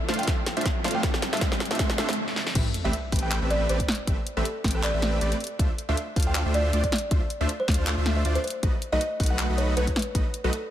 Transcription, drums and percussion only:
0.09 snare medium
0.09 closed hi-hat soft
0.14 closed hi-hat medium
0.19 closed hi-hat medium
0.23 closed hi-hat medium
0.27 kick loud
0.27 snare medium
0.27 closed hi-hat medium
0.46 snare medium
0.46 closed hi-hat medium
0.57 closed hi-hat soft
0.61 closed hi-hat medium
0.65 kick loud
0.65 snare medium
0.65 closed hi-hat medium
0.84 snare medium
0.84 closed hi-hat medium
0.88 closed hi-hat medium
0.91 closed hi-hat medium
1.03 kick loud
1.03 snare medium
1.03 closed hi-hat medium
1.14 snare medium
1.22 snare medium
1.22 closed hi-hat medium
1.33 snare medium
1.33 closed hi-hat soft
1.37 closed hi-hat medium
1.41 kick loud
1.41 snare loud
1.41 closed hi-hat medium
1.52 snare medium
1.60 snare loud
1.60 closed hi-hat soft
1.65 closed hi-hat medium
1.71 snare medium
1.71 closed hi-hat soft
1.75 closed hi-hat medium
1.79 kick loud
1.79 snare loud
1.79 closed hi-hat medium
1.90 snare medium
1.98 snare loud
1.98 closed hi-hat medium
2.09 snare medium
2.09 closed hi-hat soft
2.13 closed hi-hat medium
2.28 snare medium
2.36 snare medium
2.47 snare medium
2.55 kick loud
2.55 closed hi-hat medium
2.55 crash loud
2.74 closed hi-hat medium
2.93 closed hi-hat medium
3.12 kick loud
3.12 closed hi-hat medium
3.12 open hi-hat loud
3.19 closed hi-hat medium
3.31 clap loud
3.31 closed hi-hat medium
3.50 closed hi-hat medium
3.69 closed hi-hat medium
3.80 kick medium
3.80 closed hi-hat medium
3.88 snare medium
3.88 closed hi-hat medium
3.92 closed hi-hat medium
3.95 closed hi-hat medium
4.07 kick loud
4.07 closed hi-hat medium
4.27 closed hi-hat medium
4.45 closed hi-hat medium
4.64 kick loud
4.64 snare medium
4.64 closed hi-hat medium
4.64 open hi-hat medium
4.71 closed hi-hat medium
4.83 clap loud
4.83 closed hi-hat medium
5.02 snare medium
5.02 closed hi-hat medium
5.21 closed hi-hat medium
5.32 closed hi-hat medium
5.40 closed hi-hat medium
5.44 closed hi-hat medium
5.47 closed hi-hat medium
5.59 kick loud
5.59 closed hi-hat medium
5.78 closed hi-hat medium
5.97 closed hi-hat medium
6.16 kick loud
6.16 closed hi-hat medium
6.16 open hi-hat medium
6.23 closed hi-hat medium
6.35 clap loud
6.35 closed hi-hat medium
6.54 closed hi-hat medium
6.73 closed hi-hat medium
6.84 kick medium
6.84 closed hi-hat medium
6.92 snare medium
6.92 closed hi-hat medium
6.96 closed hi-hat medium
6.98 closed hi-hat medium
7.11 kick loud
7.11 closed hi-hat medium
7.30 closed hi-hat medium
7.49 closed hi-hat medium
7.68 kick loud
7.68 snare medium
7.68 closed hi-hat medium
7.68 open hi-hat medium
7.74 closed hi-hat medium
7.87 clap loud
7.87 closed hi-hat medium
8.06 snare medium
8.06 closed hi-hat medium
8.25 closed hi-hat medium
8.35 closed hi-hat medium
8.44 closed hi-hat soft
8.48 closed hi-hat medium
8.50 closed hi-hat medium
8.63 kick loud
8.63 closed hi-hat medium
8.82 closed hi-hat medium
9.01 closed hi-hat medium
9.20 kick loud
9.20 closed hi-hat medium
9.20 open hi-hat medium
9.26 closed hi-hat medium
9.39 clap loud
9.39 closed hi-hat medium
9.58 closed hi-hat medium
9.77 closed hi-hat medium
9.87 kick medium
9.87 closed hi-hat medium
9.96 snare medium
9.96 closed hi-hat soft
9.99 closed hi-hat medium
10.02 closed hi-hat medium
10.15 kick loud
10.15 closed hi-hat medium
10.34 closed hi-hat medium
10.53 closed hi-hat medium

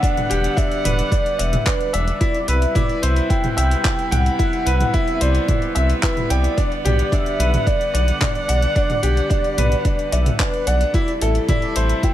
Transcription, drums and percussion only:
0.03 kick loud
0.03 closed hi-hat soft
0.17 closed hi-hat soft
0.17 mid tom medium
0.31 closed hi-hat medium
0.44 closed hi-hat soft
0.57 kick loud
0.57 closed hi-hat soft
0.72 closed hi-hat soft
0.85 closed hi-hat medium
0.85 mid tom medium
0.99 closed hi-hat soft
1.12 kick loud
1.12 closed hi-hat soft
1.26 closed hi-hat soft
1.39 closed hi-hat medium
1.53 closed hi-hat soft
1.53 mid tom medium
1.66 kick loud
1.66 clap medium
1.66 closed hi-hat soft
1.81 closed hi-hat soft
1.94 closed hi-hat medium
2.08 closed hi-hat soft
2.21 kick loud
2.21 closed hi-hat soft
2.34 closed hi-hat soft
2.48 closed hi-hat medium
2.62 closed hi-hat soft
2.75 kick loud
2.75 closed hi-hat soft
2.75 mid tom medium
2.89 closed hi-hat soft
3.03 closed hi-hat medium
3.16 closed hi-hat soft
3.30 kick loud
3.30 closed hi-hat soft
3.44 closed hi-hat soft
3.44 mid tom medium
3.58 closed hi-hat medium
3.71 closed hi-hat soft
3.85 kick loud
3.85 clap medium
3.85 closed hi-hat soft
3.99 closed hi-hat soft
4.12 closed hi-hat medium
4.12 mid tom medium
4.26 closed hi-hat soft
4.39 kick loud
4.39 closed hi-hat soft
4.53 closed hi-hat soft
4.67 closed hi-hat medium
4.80 closed hi-hat soft
4.80 mid tom medium
4.94 kick loud
4.94 closed hi-hat soft
5.08 closed hi-hat soft
5.21 closed hi-hat medium
5.35 closed hi-hat soft
5.48 kick loud
5.48 closed hi-hat soft
5.48 mid tom medium
5.62 closed hi-hat soft
5.76 closed hi-hat medium
5.90 closed hi-hat soft
6.03 kick loud
6.03 clap medium
6.03 closed hi-hat soft
6.17 closed hi-hat soft
6.17 mid tom medium
6.30 closed hi-hat medium
6.44 closed hi-hat soft
6.58 kick medium
6.58 closed hi-hat soft
6.72 closed hi-hat soft
6.86 closed hi-hat medium
6.86 mid tom medium
6.99 closed hi-hat soft
7.12 kick loud
7.12 closed hi-hat soft
7.26 closed hi-hat soft
7.40 closed hi-hat medium
7.54 closed hi-hat soft
7.54 mid tom medium
7.67 kick loud
7.67 closed hi-hat soft
7.81 closed hi-hat soft
7.95 closed hi-hat medium
8.08 closed hi-hat soft
8.21 kick loud
8.21 clap medium
8.21 closed hi-hat soft
8.21 mid tom medium
8.35 closed hi-hat soft
8.49 closed hi-hat medium
8.62 closed hi-hat soft
8.76 kick loud
8.76 closed hi-hat soft
8.90 closed hi-hat soft
8.90 mid tom medium
9.03 closed hi-hat medium
9.17 closed hi-hat soft
9.30 kick loud
9.30 closed hi-hat soft
9.44 closed hi-hat soft
9.58 closed hi-hat medium
9.58 mid tom medium
9.72 closed hi-hat soft
9.85 kick loud
9.85 closed hi-hat soft
9.99 closed hi-hat soft
10.12 closed hi-hat medium
10.26 closed hi-hat soft
10.26 mid tom medium
10.39 kick loud
10.39 clap medium
10.39 closed hi-hat soft
10.54 closed hi-hat soft
10.67 closed hi-hat medium
10.81 closed hi-hat soft
10.94 kick loud
10.94 closed hi-hat soft
11.08 closed hi-hat soft
11.21 closed hi-hat medium
11.35 closed hi-hat soft
11.49 kick loud
11.49 closed hi-hat soft
11.49 mid tom medium
11.62 closed hi-hat soft
11.76 closed hi-hat medium
11.89 closed hi-hat soft
12.03 kick loud
12.03 closed hi-hat soft

